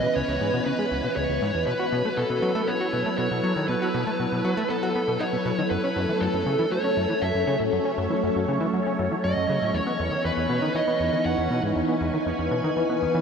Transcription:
0.00 0.07 B2 medium
0.00 1.68 E3 medium
0.00 5.72 E3 medium
0.00 6.73 B3 medium
0.00 3.14 C#4 medium
0.00 6.36 B4 medium
0.00 0.12 D#5 loud
0.00 1.68 G#5 medium
0.00 5.72 F#6 medium
0.16 0.23 C#2 medium
0.16 0.63 C#5 medium
0.28 0.39 C#2 medium
0.41 0.51 G#2 medium
0.54 0.60 B2 loud
0.66 0.73 C#3 medium
0.66 1.16 B4 loud
0.79 0.86 G#3 medium
0.91 1.02 C#2 medium
1.04 1.08 B2 medium
1.16 1.27 C#2 medium
1.16 1.63 C#5 medium
1.29 1.39 C#2 medium
1.42 1.52 G#2 loud
1.54 1.65 E2 medium
1.67 1.74 B2 medium
1.67 9.74 F#3 medium
1.67 2.19 B4 medium
1.79 1.86 F#4 medium
1.92 2.02 B2 loud
1.97 9.74 A4 medium
2.05 2.09 A3 medium
2.17 2.24 B2 medium
2.17 7.32 E4 medium
2.17 2.69 A4 medium
2.30 2.40 B2 medium
2.42 2.53 F#3 loud
2.55 2.62 A3 loud
2.68 2.75 B3 medium
2.68 3.17 C#5 medium
2.81 2.87 F#4 medium
2.93 3.03 B2 medium
3.06 3.10 A3 medium
3.18 3.28 B2 medium
3.18 3.68 C#5 medium
3.31 3.41 B2 medium
3.44 3.54 F#3 loud
3.56 3.66 D#3 medium
3.68 3.76 B2 medium
3.68 4.72 B4 medium
3.82 3.89 F#4 medium
3.94 4.04 B2 loud
4.07 4.11 A3 medium
4.20 4.26 B2 medium
4.32 4.42 B2 medium
4.45 4.55 F#3 loud
4.57 4.64 A3 loud
4.69 4.77 B3 medium
4.69 5.21 A4 medium
4.83 4.89 F#4 medium
4.96 5.02 B3 medium
5.08 5.18 B2 medium
5.20 5.24 D#4 medium
5.20 5.70 C#5 medium
5.33 5.37 B2 medium
5.46 5.52 B2 loud
5.58 5.62 D#3 medium
5.70 5.78 F#2 medium
5.70 13.21 C#4 medium
5.70 6.22 B4 medium
5.70 13.21 C#5 medium
5.83 9.74 A3 medium
5.83 5.90 C#4 medium
5.87 10.95 C#5 medium
5.96 6.06 F#2 loud
6.09 6.13 E3 medium
6.09 10.84 C#4 medium
6.20 6.28 F#2 medium
6.20 6.73 A4 medium
6.34 6.44 F#2 medium
6.46 6.56 C#3 loud
6.59 6.66 E3 loud
6.71 6.78 F#3 medium
6.71 7.24 C#5 medium
6.84 6.91 C#4 medium
6.97 7.07 F#2 medium
7.10 7.14 E3 medium
7.22 7.32 F#2 medium
7.22 7.57 E5 medium
7.35 7.45 F#2 medium
7.47 7.57 C#3 loud
7.60 7.70 A2 medium
7.73 7.79 F#2 medium
7.85 7.92 C#4 medium
7.98 8.08 F#2 loud
8.10 8.14 E3 medium
8.23 8.30 F#2 medium
8.36 8.46 F#2 medium
8.48 8.58 C#3 loud
8.61 8.67 E3 loud
8.74 8.80 F#3 medium
8.87 8.93 C#4 medium
8.99 9.09 F#2 medium
9.12 9.15 E3 medium
9.24 9.34 F#2 medium
9.24 9.76 D#5 medium
9.37 9.47 F#2 medium
9.49 9.59 C#3 loud
9.62 9.72 A2 medium
9.74 9.81 E2 medium
9.74 13.21 E3 medium
9.74 10.25 C#5 medium
9.79 13.21 B3 medium
9.87 9.93 B3 medium
9.87 13.21 D#4 medium
10.00 10.09 E2 loud
10.12 10.16 D#3 medium
10.25 10.31 E2 medium
10.25 10.77 B4 medium
10.37 10.47 E2 medium
10.49 10.60 B2 loud
10.62 10.69 D#3 loud
10.62 13.21 G#5 medium
10.75 10.82 E3 medium
10.75 11.25 D#5 loud
10.88 10.94 B3 medium
11.00 11.10 E2 medium
11.05 13.21 B4 medium
11.13 11.17 D#3 medium
11.25 11.35 E2 medium
11.25 11.61 F#5 loud
11.38 11.48 E2 medium
11.51 11.61 B2 loud
11.63 11.73 G#2 medium
11.76 11.83 E2 medium
11.88 11.95 B3 medium
12.01 12.11 E2 loud
12.14 12.18 D#3 medium
12.26 12.33 E2 medium
12.39 12.49 E2 medium
12.51 12.61 B2 loud
12.64 12.71 D#3 loud
12.77 12.83 E3 medium
12.90 12.96 B3 medium
13.02 13.06 E2 medium
13.15 13.21 E3 loud

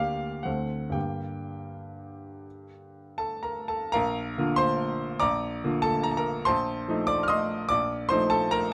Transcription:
0.00 0.44 D2 soft
0.00 0.42 A#3 soft
0.00 0.42 G4 soft
0.00 0.49 D5 medium
0.00 0.45 F5 medium
0.43 0.93 D2 medium
0.43 0.92 C4 soft
0.43 0.92 A4 soft
0.43 0.93 F#5 medium
0.90 3.88 G2 soft
0.90 3.88 D3 soft
0.90 3.89 A#3 soft
0.90 3.90 G4 soft
0.90 3.19 G5 medium
3.18 3.43 A4 medium
3.18 3.45 A5 medium
3.43 3.68 A#4 soft
3.43 3.70 A#5 medium
3.68 3.92 A4 medium
3.68 3.93 A5 medium
3.92 4.36 A#1 medium
3.92 4.54 A#4 medium
3.92 4.53 F5 medium
3.92 4.57 A#5 loud
4.38 5.18 D3 medium
4.38 5.18 A#3 medium
4.38 5.18 F4 medium
4.56 5.17 C5 medium
4.56 5.20 C6 loud
5.20 5.62 A#1 medium
5.20 5.80 D5 medium
5.20 5.80 A#5 medium
5.20 5.83 D6 medium
5.64 6.43 D3 medium
5.64 6.43 A#3 medium
5.64 6.43 F4 medium
5.82 6.03 A4 medium
5.82 6.04 A5 loud
6.03 6.11 A#5 medium
6.11 6.18 A5 medium
6.17 6.44 A#4 medium
6.17 6.46 A#5 medium
6.45 6.87 A#1 medium
6.45 7.04 C5 medium
6.45 7.04 A5 medium
6.45 7.07 C6 loud
6.88 7.67 F3 medium
6.88 7.67 A3 medium
6.88 7.67 D#4 medium
7.07 7.21 D5 medium
7.07 7.22 D6 loud
7.23 7.30 F6 medium
7.28 7.67 D#5 medium
7.28 7.67 C6 medium
7.28 7.69 D#6 loud
7.69 8.10 A#1 medium
7.69 8.08 D5 medium
7.69 8.10 D6 loud
8.09 8.73 F3 medium
8.09 8.73 A3 medium
8.09 8.73 D#4 medium
8.09 8.30 C5 medium
8.09 8.31 C6 loud
8.30 8.51 A4 medium
8.30 8.52 A5 loud
8.51 8.72 A#4 medium
8.51 8.73 A#5 loud

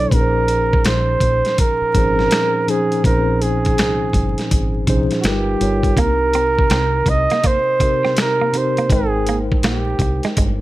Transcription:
0.00 0.13 B2 medium
0.00 0.14 F#3 medium
0.00 0.13 D4 medium
0.00 0.13 E4 medium
0.00 0.14 A4 medium
0.00 0.13 C#5 medium
0.00 0.15 D5 medium
0.11 0.74 A#1 medium
0.11 1.26 A#2 medium
0.11 1.26 F3 medium
0.11 1.27 C#4 medium
0.11 1.27 D#4 medium
0.11 1.27 G#4 medium
0.11 0.88 A#4 medium
0.11 0.21 B4 medium
0.11 kick medium
0.11 closed hi-hat medium
0.21 1.31 C5 medium
0.48 closed hi-hat medium
0.73 kick medium
0.85 1.16 A#1 medium
0.85 1.58 C5 medium
0.85 finger snap medium
0.85 snare medium
0.85 closed hi-hat medium
1.20 1.41 A#1 medium
1.20 kick medium
1.20 closed hi-hat medium
1.45 snare soft
1.45 closed hi-hat soft
1.58 2.71 A#4 medium
1.58 kick medium
1.58 closed hi-hat medium
1.81 muted fingered electric bass stroke soft
1.94 2.26 G#1 medium
1.94 2.56 A#2 medium
1.94 2.56 F3 medium
1.94 2.03 C4 soft
1.94 2.57 D#4 medium
1.94 2.57 G#4 medium
1.94 2.57 C5 medium
1.94 kick medium
1.94 closed hi-hat medium
2.02 2.59 C#4 medium
2.19 snare soft
2.31 finger snap medium
2.31 snare medium
2.31 closed hi-hat medium
2.67 2.98 A#2 medium
2.67 2.98 F3 medium
2.67 2.99 C#4 medium
2.67 2.99 D#4 medium
2.67 3.05 G#4 medium
2.67 2.99 G#4 medium
2.67 3.00 C5 medium
2.67 closed hi-hat medium
2.92 closed hi-hat soft
3.04 3.78 A#1 medium
3.04 4.19 A#2 medium
3.04 4.19 F3 medium
3.04 3.13 C4 soft
3.04 4.20 D#4 medium
3.04 4.20 G#4 medium
3.04 3.43 A#4 medium
3.04 4.21 C5 medium
3.04 kick loud
3.04 closed hi-hat medium
3.12 4.23 C#4 medium
3.42 4.87 G#4 medium
3.42 closed hi-hat medium
3.65 kick medium
3.65 closed hi-hat soft
3.78 4.09 C2 medium
3.78 finger snap medium
3.78 snare medium
3.78 closed hi-hat medium
4.13 4.34 G1 medium
4.13 kick medium
4.13 closed hi-hat soft
4.38 snare soft
4.38 closed hi-hat soft
4.51 4.83 G#1 medium
4.51 kick medium
4.51 closed hi-hat medium
4.87 5.07 C2 medium
4.87 5.23 A#2 medium
4.87 5.24 F3 medium
4.87 5.24 C#4 medium
4.87 5.23 D#4 medium
4.87 5.25 G#4 medium
4.87 5.25 C5 medium
4.87 kick medium
4.87 closed hi-hat medium
5.11 snare soft
5.11 closed hi-hat soft
5.20 5.55 G1 medium
5.20 5.55 G3 medium
5.20 5.55 D#4 medium
5.20 5.27 F#4 medium
5.20 closed hi-hat medium
5.25 5.56 F4 medium
5.25 6.01 G4 medium
5.25 5.56 A#4 medium
5.25 5.56 B4 medium
5.25 finger snap medium
5.25 snare medium
5.60 5.92 G1 medium
5.60 5.90 G3 medium
5.60 5.91 D#4 soft
5.60 5.91 F4 medium
5.60 5.92 A#4 medium
5.60 5.92 C#5 medium
5.60 closed hi-hat medium
5.83 kick medium
5.83 closed hi-hat soft
5.96 6.60 C2 medium
5.96 7.11 C3 medium
5.96 6.11 A#3 medium
5.96 7.12 C4 medium
5.96 6.06 D4 soft
5.96 7.13 G4 medium
5.96 7.11 A#4 medium
5.96 7.13 A#4 medium
5.96 kick loud
5.96 closed hi-hat medium
6.05 7.16 D#4 medium
6.34 6.48 C4 medium
6.34 closed hi-hat medium
6.59 kick medium
6.70 7.02 C2 medium
6.70 6.84 C4 medium
6.70 finger snap medium
6.70 snare medium
6.70 closed hi-hat medium
7.06 7.26 C2 medium
7.06 7.48 D#5 loud
7.06 muted clean electric guitar stroke soft
7.06 kick medium
7.06 closed hi-hat medium
7.30 7.39 A#3 medium
7.30 snare soft
7.30 closed hi-hat soft
7.44 7.57 A#3 medium
7.44 8.18 C5 loud
7.44 kick medium
7.44 closed hi-hat medium
7.79 8.41 C3 medium
7.79 8.41 C4 medium
7.79 8.42 D#4 soft
7.79 8.42 G4 medium
7.79 8.43 A#4 medium
7.79 muted clean electric guitar stroke soft
7.79 kick medium
7.79 closed hi-hat medium
8.05 8.12 C4 medium
8.05 snare soft
8.17 8.59 A#4 medium
8.17 finger snap medium
8.17 snare medium
8.17 closed hi-hat medium
8.41 8.48 A#3 medium
8.53 8.84 C3 medium
8.53 8.84 C4 medium
8.53 8.84 D#4 medium
8.53 8.85 G4 medium
8.53 8.85 A#4 medium
8.53 muted clean electric guitar stroke soft
8.53 closed hi-hat medium
8.57 8.94 C5 medium
8.77 8.85 A#3 medium
8.77 closed hi-hat soft
8.90 9.53 G#1 medium
8.90 10.04 G#3 medium
8.90 9.05 G#3 medium
8.90 10.05 D#4 medium
8.90 9.40 G#4 medium
8.90 10.06 A#4 medium
8.90 10.06 C5 medium
8.90 10.05 G5 medium
8.90 kick loud
8.90 closed hi-hat medium
9.27 9.41 A#3 medium
9.27 closed hi-hat medium
9.52 kick medium
9.63 9.94 A#1 medium
9.63 9.77 A#3 medium
9.63 10.33 G4 medium
9.63 finger snap medium
9.63 snare medium
9.63 closed hi-hat medium
9.99 10.19 C2 medium
9.99 muted clean electric guitar stroke soft
9.99 kick medium
9.99 closed hi-hat soft
10.23 10.32 G#3 medium
10.23 snare soft
10.23 closed hi-hat soft
10.37 10.61 G1 medium
10.37 10.51 G#3 medium
10.37 kick medium
10.37 closed hi-hat medium

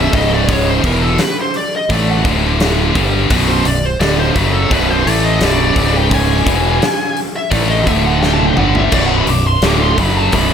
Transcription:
0.00 0.11 B0 loud
0.00 0.13 B1 medium
0.00 0.13 F#2 loud
0.00 0.14 B2 loud
0.00 0.15 E5 medium
0.13 0.80 C#1 loud
0.13 0.84 C#2 medium
0.13 0.84 G#2 loud
0.13 0.84 C#3 loud
0.13 0.31 D#5 medium
0.13 kick loud
0.13 open hi-hat medium
0.34 0.51 D5 medium
0.49 0.69 C#5 medium
0.49 kick loud
0.49 open hi-hat medium
0.69 0.85 C5 medium
0.84 1.17 E1 medium
0.84 1.19 E2 medium
0.84 1.19 B2 loud
0.84 1.19 E3 loud
0.84 1.02 A#4 medium
0.84 kick loud
0.84 open hi-hat medium
1.03 1.20 A4 medium
1.18 1.37 B4 medium
1.18 snare medium
1.18 open hi-hat medium
1.41 1.56 C5 medium
1.54 1.73 D5 medium
1.54 open hi-hat medium
1.76 1.91 D#5 loud
1.90 2.23 A1 medium
1.90 2.23 A2 loud
1.90 2.24 E3 loud
1.90 2.25 A3 loud
1.90 2.08 D5 medium
1.90 kick medium
1.90 open hi-hat medium
2.09 2.19 F#5 loud
2.24 2.91 D1 medium
2.24 2.94 D2 loud
2.24 2.94 A2 medium
2.24 2.94 D3 loud
2.24 kick loud
2.24 open hi-hat medium
2.60 snare loud
2.60 open hi-hat medium
2.94 3.28 G1 loud
2.94 3.29 G2 medium
2.94 3.29 D3 loud
2.94 3.30 G3 loud
2.94 kick loud
2.94 open hi-hat medium
3.30 3.63 B0 medium
3.30 3.64 B1 medium
3.30 3.65 F#2 loud
3.30 3.65 B2 loud
3.30 kick loud
3.30 open hi-hat medium
3.49 3.65 C5 medium
3.65 3.98 B0 medium
3.65 3.94 B1 medium
3.65 3.94 F#2 medium
3.65 3.86 D5 medium
3.65 open hi-hat medium
3.86 4.00 C5 medium
4.00 4.33 D1 loud
4.00 4.35 D2 medium
4.00 4.35 A2 medium
4.00 4.35 D3 medium
4.00 4.18 D5 medium
4.00 snare loud
4.00 open hi-hat medium
4.19 4.36 C5 medium
4.36 4.69 F#1 loud
4.36 4.70 F#2 medium
4.36 4.71 C#3 medium
4.36 4.71 F#3 medium
4.36 4.54 B4 medium
4.36 kick loud
4.36 open hi-hat medium
4.53 4.70 A4 medium
4.71 5.04 B0 loud
4.71 5.05 B1 medium
4.71 5.06 F#2 loud
4.71 5.06 B2 loud
4.71 4.90 B4 medium
4.71 kick loud
4.71 open hi-hat medium
4.90 5.09 C5 medium
5.05 5.39 A1 medium
5.05 5.40 A2 loud
5.05 5.41 E3 medium
5.05 5.41 A3 medium
5.05 5.25 D5 loud
5.05 open hi-hat medium
5.25 5.45 D#5 medium
5.41 5.74 B0 loud
5.41 5.76 B1 loud
5.41 5.76 F#2 medium
5.41 5.76 B2 loud
5.41 5.96 D5 medium
5.41 snare loud
5.41 open hi-hat medium
5.76 6.43 C#1 loud
5.76 6.46 C#2 loud
5.76 6.46 G#2 loud
5.76 6.46 C#3 loud
5.76 kick medium
5.76 open hi-hat medium
5.97 6.14 G5 medium
6.11 7.18 G#5 medium
6.11 kick loud
6.11 open hi-hat medium
6.46 6.79 E1 medium
6.46 6.81 E2 medium
6.46 6.81 B2 medium
6.46 6.82 E3 loud
6.46 kick loud
6.46 open hi-hat medium
6.82 snare loud
6.82 open hi-hat medium
7.17 open hi-hat medium
7.36 7.50 E5 medium
7.50 7.85 A1 medium
7.50 7.86 A2 loud
7.50 7.86 E3 loud
7.50 7.87 A3 loud
7.50 7.69 D5 medium
7.50 kick loud
7.50 open hi-hat medium
7.70 7.86 D#5 medium
7.86 8.53 D1 medium
7.86 8.56 D2 medium
7.86 8.57 A2 loud
7.86 8.56 D3 medium
7.86 8.04 E5 loud
7.86 kick loud
7.86 open hi-hat medium
8.05 8.22 F#5 medium
8.22 8.33 G5 medium
8.22 snare medium
8.33 8.45 A5 loud
8.39 high tom medium
8.47 8.56 G5 medium
8.57 8.90 G1 medium
8.57 8.92 G2 loud
8.57 8.92 D3 loud
8.57 8.92 G3 loud
8.57 8.74 F#5 medium
8.57 mid tom medium
8.75 8.93 E5 medium
8.75 floor tom medium
8.92 9.25 B0 medium
8.92 9.27 B1 loud
8.92 9.27 F#2 loud
8.92 9.28 B2 loud
8.92 9.05 D5 medium
8.92 kick loud
8.92 crash loud
9.05 9.16 F#5 medium
9.17 9.28 B5 medium
9.27 9.60 B0 medium
9.27 9.56 B1 medium
9.27 9.57 F#2 medium
9.27 9.46 D6 loud
9.27 open hi-hat medium
9.47 9.64 C6 medium
9.62 9.95 D1 loud
9.62 9.98 D2 medium
9.62 9.98 A2 medium
9.62 9.98 D3 medium
9.62 9.81 D6 loud
9.62 snare loud
9.62 open hi-hat medium
9.83 9.99 C6 medium
9.98 10.31 F#1 loud
9.98 10.32 F#2 medium
9.98 10.33 C#3 medium
9.98 10.33 F#3 loud
9.98 10.17 B5 loud
9.98 kick loud
9.98 open hi-hat medium
10.17 10.34 A5 loud
10.32 10.54 B0 loud
10.32 10.54 B1 medium
10.32 10.54 F#2 loud
10.32 10.54 B2 medium
10.32 10.51 B5 medium
10.32 kick loud
10.32 open hi-hat medium

